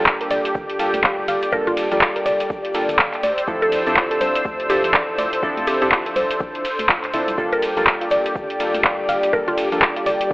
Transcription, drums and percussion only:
0.06 kick loud
0.06 clap loud
0.06 shaker soft
0.21 closed hi-hat medium
0.31 open hi-hat loud
0.31 ride medium
0.31 shaker medium
0.45 closed hi-hat medium
0.45 shaker medium
0.55 kick loud
0.55 shaker soft
0.70 closed hi-hat soft
0.79 open hi-hat loud
0.79 ride medium
0.79 shaker loud
0.94 closed hi-hat medium
0.94 shaker medium
1.03 kick loud
1.03 clap loud
1.03 shaker soft
1.28 open hi-hat loud
1.28 ride medium
1.28 shaker medium
1.42 closed hi-hat medium
1.42 shaker medium
1.52 kick loud
1.52 shaker soft
1.67 closed hi-hat soft
1.77 open hi-hat loud
1.77 ride medium
1.77 shaker medium
1.92 open hi-hat medium
1.92 shaker medium
2.01 kick loud
2.01 clap loud
2.01 shaker soft
2.16 closed hi-hat medium
2.26 open hi-hat loud
2.26 ride medium
2.26 shaker medium
2.40 closed hi-hat medium
2.40 shaker medium
2.50 kick loud
2.50 shaker soft
2.65 closed hi-hat soft
2.74 open hi-hat loud
2.74 ride medium
2.74 shaker medium
2.89 closed hi-hat medium
2.89 shaker medium
2.99 kick loud
2.99 clap loud
2.99 shaker soft
3.14 clap soft
3.14 closed hi-hat soft
3.23 open hi-hat loud
3.23 ride medium
3.23 shaker medium
3.38 closed hi-hat medium
3.38 shaker medium
3.48 kick loud
3.48 shaker soft
3.62 closed hi-hat soft
3.72 open hi-hat loud
3.72 ride medium
3.72 shaker medium
3.87 open hi-hat medium
3.87 shaker medium
3.96 kick loud
3.96 clap loud
3.96 shaker soft
4.11 closed hi-hat medium
4.21 open hi-hat loud
4.21 ride medium
4.21 shaker medium
4.35 closed hi-hat medium
4.35 shaker medium
4.45 kick loud
4.45 shaker soft
4.60 closed hi-hat medium
4.70 open hi-hat loud
4.70 ride medium
4.70 shaker medium
4.84 closed hi-hat medium
4.84 shaker medium
4.94 kick loud
4.94 clap loud
4.94 shaker soft
5.18 open hi-hat loud
5.18 ride medium
5.18 shaker medium
5.32 closed hi-hat medium
5.32 shaker soft
5.43 kick loud
5.43 shaker soft
5.57 closed hi-hat soft
5.67 open hi-hat loud
5.67 ride medium
5.67 shaker medium
5.82 open hi-hat medium
5.82 shaker medium
5.91 kick loud
5.91 clap loud
5.91 shaker soft
6.06 closed hi-hat medium
6.16 open hi-hat loud
6.16 ride medium
6.16 shaker medium
6.31 closed hi-hat medium
6.31 shaker medium
6.40 kick loud
6.40 shaker soft
6.55 closed hi-hat medium
6.65 open hi-hat loud
6.65 ride medium
6.65 shaker medium
6.79 closed hi-hat medium
6.79 shaker soft
6.89 kick loud
6.89 clap loud
6.89 shaker soft
7.04 clap soft
7.04 closed hi-hat soft
7.13 open hi-hat loud
7.13 ride medium
7.13 shaker medium
7.28 closed hi-hat medium
7.28 shaker medium
7.38 kick loud
7.38 shaker soft
7.53 closed hi-hat soft
7.62 open hi-hat loud
7.62 ride medium
7.62 shaker medium
7.77 open hi-hat medium
7.77 shaker soft
7.87 kick loud
7.87 clap loud
7.87 shaker soft
8.01 closed hi-hat medium
8.11 open hi-hat loud
8.11 ride medium
8.11 shaker loud
8.25 closed hi-hat medium
8.25 shaker soft
8.36 kick loud
8.36 shaker soft
8.50 closed hi-hat medium
8.60 open hi-hat loud
8.60 ride medium
8.60 shaker loud
8.74 closed hi-hat medium
8.74 shaker medium
8.84 kick loud
8.84 clap loud
8.84 shaker soft
9.09 open hi-hat loud
9.09 ride medium
9.09 shaker loud
9.22 closed hi-hat medium
9.22 shaker medium
9.33 kick loud
9.33 shaker soft
9.48 closed hi-hat soft
9.58 open hi-hat loud
9.58 ride medium
9.58 shaker loud
9.72 open hi-hat medium
9.72 shaker medium
9.82 kick loud
9.82 clap loud
9.82 shaker soft
9.96 closed hi-hat medium
10.06 open hi-hat loud
10.06 ride medium
10.06 shaker loud
10.21 closed hi-hat medium
10.21 shaker medium
10.31 kick loud

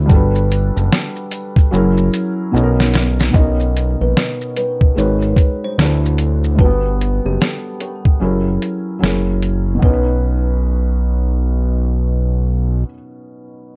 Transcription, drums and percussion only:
0.09 kick loud
0.09 shaker medium
0.35 shaker soft
0.51 closed hi-hat medium
0.51 tambourine medium
0.51 shaker soft
0.77 shaker soft
0.93 snare loud
0.93 shaker medium
1.16 shaker soft
1.31 closed hi-hat medium
1.31 tambourine medium
1.31 shaker soft
1.56 kick medium
1.56 shaker soft
1.73 shaker medium
1.97 shaker soft
2.11 closed hi-hat medium
2.11 tambourine soft
2.11 shaker medium
2.56 shaker medium
2.80 snare medium
2.80 shaker soft
2.94 snare medium
2.94 closed hi-hat medium
2.94 tambourine medium
2.94 shaker soft
3.19 snare medium
3.19 shaker soft
3.34 kick loud
3.34 shaker medium
3.60 shaker soft
3.77 closed hi-hat medium
3.77 shaker soft
4.17 snare loud
4.17 shaker medium
4.41 shaker soft
4.57 closed hi-hat medium
4.57 shaker soft
4.81 kick medium
4.98 shaker medium
5.22 shaker soft
5.36 kick medium
5.36 closed hi-hat medium
5.36 shaker soft
5.79 snare medium
5.79 shaker medium
6.05 shaker soft
6.18 closed hi-hat medium
6.18 shaker soft
6.44 shaker soft
6.59 kick loud
7.01 closed hi-hat medium
7.42 snare loud
7.80 closed hi-hat soft
8.05 kick medium
8.62 closed hi-hat medium
9.04 snare medium
9.43 closed hi-hat medium
9.82 kick medium

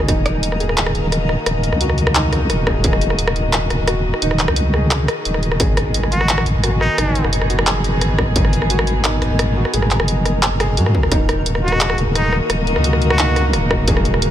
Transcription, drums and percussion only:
0.08 kick loud
0.08 cross-stick soft
0.08 closed hi-hat medium
0.26 cross-stick medium
0.26 closed hi-hat soft
0.43 closed hi-hat medium
0.52 cross-stick soft
0.60 closed hi-hat soft
0.69 cross-stick soft
0.78 clap loud
0.78 closed hi-hat medium
0.86 cross-stick medium
0.95 closed hi-hat soft
1.12 cross-stick soft
1.12 closed hi-hat medium
1.29 cross-stick medium
1.46 cross-stick medium
1.46 closed hi-hat medium
1.64 closed hi-hat soft
1.73 cross-stick soft
1.81 closed hi-hat medium
1.90 cross-stick soft
1.98 closed hi-hat soft
2.07 cross-stick medium
2.15 clap loud
2.15 closed hi-hat medium
2.33 cross-stick soft
2.33 closed hi-hat soft
2.50 cross-stick soft
2.50 closed hi-hat medium
2.67 kick medium
2.67 cross-stick medium
2.84 kick loud
2.84 closed hi-hat medium
2.93 cross-stick medium
3.01 closed hi-hat soft
3.10 cross-stick soft
3.19 closed hi-hat medium
3.27 cross-stick medium
3.36 closed hi-hat soft
3.53 cross-stick soft
3.53 clap loud
3.53 closed hi-hat medium
3.70 cross-stick medium
3.70 closed hi-hat soft
3.88 cross-stick medium
3.88 closed hi-hat medium
4.14 cross-stick medium
4.22 closed hi-hat medium
4.31 cross-stick medium
4.39 clap medium
4.39 closed hi-hat soft
4.48 cross-stick medium
4.56 closed hi-hat medium
4.74 cross-stick medium
4.91 cross-stick medium
4.91 clap loud
4.91 closed hi-hat medium
5.08 cross-stick medium
5.08 closed hi-hat soft
5.25 closed hi-hat medium
5.34 cross-stick medium
5.43 closed hi-hat soft
5.52 cross-stick medium
5.60 kick loud
5.60 cross-stick medium
5.60 closed hi-hat medium
5.77 cross-stick medium
5.77 closed hi-hat soft
5.94 closed hi-hat medium
6.03 cross-stick medium
6.12 closed hi-hat soft
6.21 cross-stick medium
6.29 clap loud
6.29 closed hi-hat medium
6.38 cross-stick medium
6.46 closed hi-hat soft
6.64 cross-stick soft
6.64 closed hi-hat medium
6.81 cross-stick medium
6.98 cross-stick medium
6.98 closed hi-hat medium
7.15 closed hi-hat soft
7.24 cross-stick medium
7.33 closed hi-hat medium
7.41 cross-stick medium
7.50 closed hi-hat soft
7.59 cross-stick medium
7.67 clap loud
7.67 closed hi-hat medium
7.84 closed hi-hat soft
8.01 cross-stick soft
8.01 closed hi-hat medium
8.19 kick medium
8.19 cross-stick medium
8.36 kick loud
8.36 closed hi-hat medium
8.45 cross-stick medium
8.53 closed hi-hat soft
8.62 cross-stick soft
8.70 closed hi-hat medium
8.79 cross-stick medium
8.87 closed hi-hat soft
9.04 cross-stick soft
9.04 clap loud
9.04 closed hi-hat medium
9.22 cross-stick soft
9.22 closed hi-hat soft
9.39 cross-stick medium
9.39 closed hi-hat medium
9.65 cross-stick medium
9.74 closed hi-hat medium
9.82 cross-stick soft
9.91 clap medium
9.91 closed hi-hat soft
10.00 cross-stick medium
10.08 closed hi-hat medium
10.25 cross-stick soft
10.25 closed hi-hat soft
10.43 cross-stick soft
10.43 clap loud
10.43 closed hi-hat medium
10.60 cross-stick medium
10.60 closed hi-hat soft
10.77 closed hi-hat medium
10.86 cross-stick soft
10.95 kick medium
11.03 cross-stick soft
11.12 kick loud
11.12 cross-stick medium
11.12 closed hi-hat medium
11.29 cross-stick medium
11.29 closed hi-hat soft
11.46 closed hi-hat medium
11.55 cross-stick soft
11.68 closed hi-hat soft
11.72 cross-stick medium
11.81 clap loud
11.81 closed hi-hat medium
11.90 cross-stick medium
11.98 closed hi-hat soft
12.15 cross-stick soft
12.15 closed hi-hat medium
12.33 cross-stick soft
12.50 cross-stick medium
12.50 closed hi-hat medium
12.67 closed hi-hat soft
12.76 cross-stick soft
12.84 closed hi-hat medium
12.93 cross-stick soft
13.02 closed hi-hat soft
13.10 cross-stick medium
13.19 clap loud
13.19 closed hi-hat medium
13.36 cross-stick medium
13.36 closed hi-hat soft
13.53 cross-stick soft
13.53 closed hi-hat medium
13.71 kick medium
13.71 cross-stick medium
13.88 kick loud
13.88 closed hi-hat medium
13.97 cross-stick medium
14.05 closed hi-hat soft
14.14 cross-stick medium
14.22 closed hi-hat medium

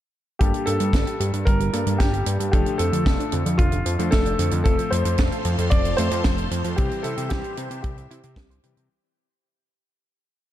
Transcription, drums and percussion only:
0.41 kick loud
0.41 closed hi-hat medium
0.54 closed hi-hat soft
0.67 closed hi-hat medium
0.80 closed hi-hat medium
0.93 kick medium
0.93 snare loud
0.93 closed hi-hat medium
1.07 closed hi-hat soft
1.20 closed hi-hat medium
1.33 closed hi-hat medium
1.47 kick loud
1.47 closed hi-hat medium
1.60 closed hi-hat soft
1.73 closed hi-hat medium
1.87 closed hi-hat medium
2.00 kick loud
2.00 snare loud
2.00 closed hi-hat medium
2.14 closed hi-hat soft
2.26 closed hi-hat loud
2.40 closed hi-hat medium
2.53 kick loud
2.53 closed hi-hat medium
2.66 closed hi-hat soft
2.79 closed hi-hat loud
2.93 closed hi-hat medium
3.06 kick loud
3.06 snare loud
3.06 closed hi-hat medium
3.20 closed hi-hat soft
3.32 closed hi-hat medium
3.46 closed hi-hat medium
3.59 kick loud
3.59 closed hi-hat medium
3.72 closed hi-hat soft
3.86 closed hi-hat loud
3.99 closed hi-hat medium
4.12 kick loud
4.12 snare loud
4.12 closed hi-hat medium
4.26 closed hi-hat soft
4.39 closed hi-hat loud
4.51 closed hi-hat medium
4.65 kick loud
4.65 closed hi-hat medium
4.79 closed hi-hat soft
4.92 closed hi-hat loud
5.05 closed hi-hat medium
5.18 kick loud
5.18 snare loud
5.18 closed hi-hat medium
5.32 closed hi-hat soft
5.45 closed hi-hat medium
5.58 closed hi-hat medium
5.71 kick loud
5.71 closed hi-hat medium
5.85 closed hi-hat soft
5.98 closed hi-hat loud
6.11 closed hi-hat medium
6.24 kick loud
6.24 snare loud
6.24 closed hi-hat medium
6.38 closed hi-hat soft
6.51 closed hi-hat loud
6.64 closed hi-hat medium
6.78 kick loud
6.78 closed hi-hat medium
6.91 closed hi-hat soft
7.04 closed hi-hat medium
7.17 closed hi-hat medium
7.30 kick loud
7.30 snare loud
7.30 closed hi-hat medium
7.44 closed hi-hat soft
7.57 closed hi-hat loud
7.71 closed hi-hat medium
7.84 kick loud
7.84 closed hi-hat medium
7.98 closed hi-hat soft
8.11 closed hi-hat medium
8.23 closed hi-hat medium
8.36 kick loud
8.36 snare loud
8.36 closed hi-hat medium
8.51 closed hi-hat soft
8.63 closed hi-hat medium
8.77 closed hi-hat medium

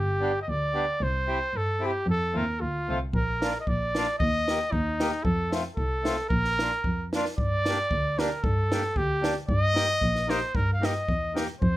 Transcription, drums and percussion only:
3.13 kick medium
3.42 snare medium
3.67 kick medium
3.95 snare medium
4.20 kick medium
4.48 snare medium
4.73 kick medium
5.00 snare medium
5.25 kick medium
5.52 snare medium
5.77 kick soft
6.05 snare medium
6.30 kick medium
6.45 snare soft
6.59 snare medium
6.84 kick medium
7.13 snare medium
7.25 snare soft
7.38 kick medium
7.66 snare medium
7.91 kick medium
8.19 snare medium
8.44 kick medium
8.72 snare medium
8.96 kick medium
9.24 snare medium
9.49 kick medium
9.76 snare medium
10.01 kick medium
10.15 snare soft
10.30 snare medium
10.55 kick medium
10.83 snare medium
11.09 kick medium
11.37 snare medium
11.62 kick medium

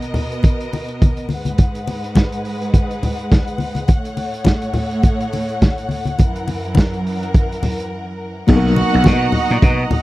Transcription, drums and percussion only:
0.02 closed hi-hat soft
0.14 open hi-hat medium
0.14 low conga medium
0.32 closed hi-hat soft
0.43 kick loud
0.43 closed hi-hat medium
0.43 muted conga soft
0.60 closed hi-hat soft
0.73 open hi-hat medium
0.73 muted conga medium
0.88 closed hi-hat soft
1.02 kick loud
1.02 closed hi-hat medium
1.02 high conga medium
1.17 closed hi-hat soft
1.29 open hi-hat medium
1.29 high conga medium
1.45 closed hi-hat medium
1.45 high conga medium
1.58 kick loud
1.58 closed hi-hat medium
1.58 muted conga soft
1.75 closed hi-hat soft
1.87 open hi-hat medium
1.87 muted conga medium
2.04 closed hi-hat soft
2.15 kick medium
2.15 snare loud
2.15 closed hi-hat medium
2.15 high conga medium
2.32 closed hi-hat soft
2.45 open hi-hat medium
2.62 closed hi-hat soft
2.74 kick loud
2.74 closed hi-hat medium
2.91 closed hi-hat soft
3.03 open hi-hat medium
3.03 muted conga soft
3.03 low conga medium
3.19 closed hi-hat soft
3.32 kick loud
3.32 snare medium
3.32 closed hi-hat medium
3.32 high conga medium
3.47 closed hi-hat soft
3.58 open hi-hat medium
3.58 high conga medium
3.75 closed hi-hat medium
3.75 high conga medium
3.88 kick loud
3.88 closed hi-hat medium
3.88 muted conga medium
4.05 closed hi-hat soft
4.17 open hi-hat medium
4.17 muted conga medium
4.34 closed hi-hat soft
4.45 kick medium
4.45 snare medium
4.45 closed hi-hat medium
4.45 high conga medium
4.62 closed hi-hat soft
4.74 open hi-hat medium
4.74 low conga medium
4.91 closed hi-hat soft
5.03 kick loud
5.03 closed hi-hat medium
5.03 muted conga soft
5.20 closed hi-hat soft
5.33 open hi-hat medium
5.33 muted conga medium
5.49 closed hi-hat soft
5.62 kick loud
5.62 snare medium
5.62 closed hi-hat medium
5.62 high conga medium
5.78 closed hi-hat soft
5.89 open hi-hat medium
5.89 high conga medium
6.05 closed hi-hat soft
6.05 high conga medium
6.19 kick loud
6.19 closed hi-hat medium
6.19 muted conga medium
6.36 closed hi-hat soft
6.48 open hi-hat medium
6.48 muted conga medium
6.65 closed hi-hat soft
6.75 kick medium
6.75 snare loud
6.75 closed hi-hat medium
6.75 high conga medium
6.93 closed hi-hat soft
7.07 open hi-hat medium
7.23 closed hi-hat soft
7.34 kick loud
7.34 closed hi-hat medium
7.52 closed hi-hat soft
7.63 open hi-hat medium
7.63 muted conga medium
7.63 low conga medium
7.80 closed hi-hat soft
8.48 kick loud
8.48 crash medium
8.48 muted conga medium
8.66 snare soft
8.76 open hi-hat medium
8.76 muted conga medium
8.94 closed hi-hat soft
9.04 kick loud
9.04 snare loud
9.04 closed hi-hat medium
9.04 high conga medium
9.32 open hi-hat medium
9.32 low conga medium
9.50 closed hi-hat medium
9.62 kick loud
9.62 closed hi-hat medium
9.91 open hi-hat medium
9.91 muted conga medium
9.91 low conga medium

